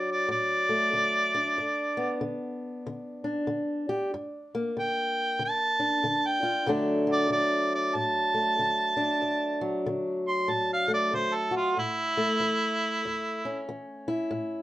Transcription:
0.00 0.25 D3 medium
0.00 1.58 F#3 medium
0.00 0.69 D4 medium
0.11 0.31 D5 medium
0.29 0.89 A2 medium
0.29 2.18 D5 loud
0.69 1.58 A3 medium
0.93 1.53 D3 medium
1.35 3.24 D4 medium
1.58 2.17 G2 medium
1.97 4.10 B3 medium
2.21 2.80 D3 medium
2.87 3.45 D3 medium
3.24 5.79 D4 medium
3.47 4.07 D3 medium
3.89 4.11 G4 medium
4.14 4.72 G2 medium
4.55 6.66 A#3 medium
4.77 5.36 D3 medium
4.77 5.40 G5 medium
5.39 5.99 D3 medium
5.45 6.28 A5 loud
5.80 6.69 D4 medium
6.04 6.63 D3 medium
6.27 6.68 G5 medium
6.43 6.65 F4 medium
6.66 7.26 D2 medium
6.66 7.30 D3 medium
6.66 7.07 F#3 medium
6.66 8.34 A3 medium
6.66 8.96 D4 medium
7.07 9.60 F#3 medium
7.12 7.32 D5 loud
7.30 7.90 D3 medium
7.30 7.73 D5 medium
7.75 7.97 D5 medium
7.95 8.54 A2 medium
7.95 9.83 A5 loud
8.34 10.88 A3 medium
8.59 9.18 D3 medium
8.97 11.51 D4 medium
9.22 9.81 D2 medium
9.61 11.78 F#3 medium
9.86 10.45 D3 medium
10.28 10.51 C6 medium
10.48 11.08 A2 medium
10.48 10.71 A5 medium
10.73 10.93 F5 medium
10.88 12.17 A3 medium
10.94 11.16 D5 loud
11.13 11.73 D3 medium
11.13 11.36 C5 medium
11.35 11.56 A4 medium
11.51 11.74 F#4 medium
11.57 11.77 F4 medium
11.77 12.36 A2 medium
11.77 13.66 E4 loud
12.17 14.62 A3 medium
12.40 13.00 E3 medium
13.05 13.64 E2 medium
13.45 14.62 C#4 medium
13.69 14.28 E3 medium
14.08 14.62 E4 medium
14.31 14.62 A2 medium

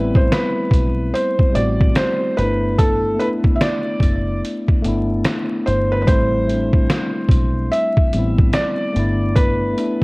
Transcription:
0.00 0.28 A1 loud
0.00 1.52 G3 loud
0.00 1.48 A3 medium
0.00 2.39 B3 medium
0.00 1.56 C4 medium
0.00 2.39 E4 loud
0.00 0.18 B4 loud
0.15 0.32 C5 medium
0.15 kick loud
0.32 1.17 B4 medium
0.32 snare loud
0.32 closed hi-hat medium
0.71 1.11 B1 medium
0.71 kick medium
0.71 closed hi-hat medium
1.14 1.56 C5 medium
1.14 closed hi-hat medium
1.39 muted fingered electric bass stroke soft
1.39 kick medium
1.52 2.36 G3 medium
1.52 2.35 A3 medium
1.52 1.98 D5 medium
1.52 closed hi-hat medium
1.56 1.95 A1 loud
1.56 2.38 C4 medium
1.56 2.39 F#4 medium
1.81 kick loud
1.96 2.39 C5 medium
1.96 snare loud
1.96 closed hi-hat loud
2.36 3.16 G1 loud
2.36 3.13 A3 medium
2.36 3.15 B3 medium
2.36 2.80 B4 medium
2.36 closed hi-hat medium
2.41 3.17 D4 medium
2.41 3.18 E4 medium
2.78 3.21 A4 loud
2.78 kick loud
2.78 closed hi-hat medium
3.14 4.73 A3 medium
3.14 4.74 B3 medium
3.19 4.75 D4 medium
3.19 4.76 E4 medium
3.19 3.28 B4 medium
3.19 closed hi-hat medium
3.44 kick loud
3.56 3.61 E5 medium
3.61 4.39 D5 loud
3.61 snare loud
3.61 closed hi-hat medium
4.00 4.40 F#1 medium
4.00 kick medium
4.00 closed hi-hat medium
4.45 closed hi-hat medium
4.68 muted fingered electric bass stroke medium
4.68 kick medium
4.82 5.24 G1 medium
4.82 6.00 A3 medium
4.82 6.01 B3 medium
4.82 closed hi-hat medium
4.86 6.02 D4 medium
4.86 6.03 E4 medium
5.25 snare loud
5.25 closed hi-hat medium
5.66 6.06 G1 loud
5.66 5.92 C5 medium
5.66 closed hi-hat medium
5.92 6.00 B4 medium
6.02 6.44 G3 medium
6.02 6.07 B4 medium
6.07 6.86 A1 loud
6.07 6.46 A3 medium
6.07 6.47 C4 medium
6.07 7.76 C5 loud
6.07 kick loud
6.07 closed hi-hat medium
6.11 6.48 E4 loud
6.45 8.03 G3 medium
6.45 8.04 A3 medium
6.45 closed hi-hat medium
6.50 8.05 C4 medium
6.50 8.06 D4 medium
6.73 kick medium
6.90 snare loud
6.90 closed hi-hat medium
7.29 7.69 B1 medium
7.29 kick loud
7.29 closed hi-hat medium
7.72 8.50 E5 loud
7.72 closed hi-hat medium
7.97 muted fingered electric bass stroke soft
7.97 kick medium
8.12 8.53 A1 medium
8.12 8.95 G3 medium
8.12 8.93 B3 medium
8.12 closed hi-hat medium
8.17 8.97 C4 medium
8.17 8.98 E4 medium
8.38 kick loud
8.53 9.39 D5 loud
8.53 snare loud
8.53 closed hi-hat loud
8.93 9.74 G1 loud
8.93 9.72 A3 medium
8.93 9.73 B3 medium
8.93 closed hi-hat medium
8.97 9.74 D4 medium
8.97 9.75 E4 medium
9.36 10.04 B4 medium
9.36 kick loud
9.36 closed hi-hat loud
9.73 10.04 A3 medium
9.73 10.04 B3 medium
9.78 10.04 D4 medium
9.78 10.04 E4 medium
9.78 closed hi-hat medium

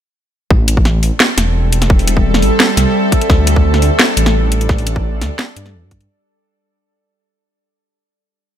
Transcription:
0.51 1.02 A1 loud
0.51 6.09 G3 medium
0.51 kick loud
0.56 3.93 C4 medium
0.68 closed hi-hat medium
0.77 6.09 A4 medium
0.77 kick medium
0.85 snare medium
1.03 1.11 A1 loud
1.03 open hi-hat medium
1.20 snare loud
1.28 4.05 E5 medium
1.38 2.44 E1 loud
1.38 snare medium
1.38 closed hi-hat medium
1.73 closed hi-hat medium
1.82 snare medium
1.82 closed hi-hat soft
1.90 kick loud
1.99 open hi-hat soft
2.08 closed hi-hat medium
2.17 kick medium
2.34 snare medium
2.42 2.51 A1 loud
2.42 open hi-hat medium
2.60 snare loud
2.77 2.86 C2 loud
2.77 snare medium
2.77 closed hi-hat medium
3.12 kick medium
3.12 closed hi-hat medium
3.21 closed hi-hat soft
3.30 3.81 D2 loud
3.30 6.09 D4 medium
3.30 kick loud
3.30 snare medium
3.47 closed hi-hat medium
3.56 kick medium
3.73 6.09 D5 medium
3.73 snare medium
3.82 3.91 D2 loud
3.82 open hi-hat medium
4.00 snare loud
4.17 5.23 A1 loud
4.17 closed hi-hat medium
4.26 snare medium
4.52 closed hi-hat medium
4.61 closed hi-hat soft
4.69 kick loud
4.69 snare medium
4.78 open hi-hat soft
4.87 closed hi-hat medium
4.96 kick medium
5.21 5.30 D2 loud
5.21 snare medium
5.21 open hi-hat medium
5.39 snare loud
5.56 5.75 G2 medium
5.56 closed hi-hat medium
5.66 snare soft
5.74 5.85 E2 medium
5.83 6.08 G2 medium
5.91 kick medium
5.91 closed hi-hat medium
6.01 closed hi-hat soft

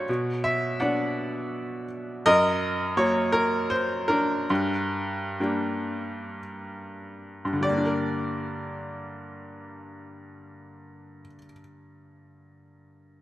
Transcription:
0.00 0.10 G3 soft
0.00 0.77 F#4 soft
0.00 0.41 C#5 medium
0.00 0.11 F5 medium
0.09 2.22 B2 medium
0.44 0.78 E5 medium
0.80 2.22 B3 soft
0.80 2.22 D4 soft
0.80 1.85 D5 medium
0.80 1.85 F#5 medium
2.26 4.46 F#2 medium
2.26 3.30 A#4 medium
2.26 2.94 D#5 loud
2.97 4.46 F#3 soft
2.97 4.46 A#3 soft
2.97 3.31 C#5 medium
3.32 3.71 A#4 medium
3.70 4.06 C5 medium
4.08 5.39 D4 medium
4.08 6.40 A#4 medium
4.50 7.43 G2 medium
5.40 7.59 G3 soft
5.40 7.61 A#3 soft
5.40 7.61 D4 soft
7.45 11.19 G2 soft
7.53 11.27 D3 soft
7.61 11.35 G3 soft
7.61 11.37 D5 medium
7.69 11.43 A#3 soft
7.77 11.51 D4 soft
7.86 11.60 A#4 soft

